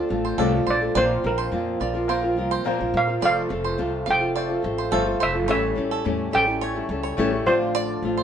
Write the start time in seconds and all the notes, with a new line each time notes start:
Already playing: F3 C4 D4 F4 C5 D5
0.09 A1 A3 C4 F4 A4
0.25 C5
0.38 C2 A2 D3 A3 C4 F4 A4 D5
0.53 A3 C4 F4 A4
0.67 A#1 C5 D5
0.81 A3 C4 F4 A4
0.95 A#1 A#2 F3 A#3 C4 F4 A#4 C5 D5
1.23 A#1 F3 C4 F4 A#4
1.38 C5
1.52 F2 A#2 F3 C4 F4 A#4
1.80 A#1 F3 C4 F4 A#4 D5
1.94 C4 F4 A#4
2.08 A#3 F4 A#4 C5
2.23 C4 F4 A#4
2.37 C2 F3 C4 F4 A#4
2.51 C5
2.64 A#2 F3 A#3 C4 F4 A#4 C5, muted upright bass stroke
2.79 A#1 C4 F4 A#4
2.94 A#2 F5
3.07 C4 F4 A#4
3.21 F1 F2 C3 F3 A3 C4 F4 A4 C5 D5
3.25 F5
3.49 F1 F3 C4 F4 A4
3.64 C5
3.77 C2 F2 C3 F3 C4 F4 A4
4.06 F1 F3 C4 F4 A4 F5
4.11 G5
4.20 F3 C4 F4 A4
4.36 A3 F4 C5 D5
4.49 F3 C4 F4 A4
4.62 A1 F3 C4 F4 A4
4.78 C5
4.91 G1 F2 C3 F3 A3 C4 F4 A4 C5
5.06 F3 C4 F4 A4
5.20 F1 C5 E5
5.34 F3 C4 F4 A4
5.48 A1 A2 E3 G3 A3 C#4 E4 G4 A4 C#5 E5
5.75 A1 G3 C#4 E4 A4
5.91 A4
6.04 E2 A2 E3 G3 C#4 E4 A4
6.31 A1 G3 C#4 E4 A4 E5 G5
6.46 G3 C#4 E4 A4
6.61 A3 G4 C#5
6.75 G3 C#4 E4 A4
6.89 C#2 G3 C#4 E4 A4
7.03 C#5
7.17 A1 A2 E3 G3 A3 C#4 E4 G4 A4 C#5
7.33 G3 C#4 E4
7.46 A1 A2 D3 F3 A3 C4 D4 F4 C5 D5
7.75 D5
8.02 A1 F3 A3 C4 F4
8.17 C5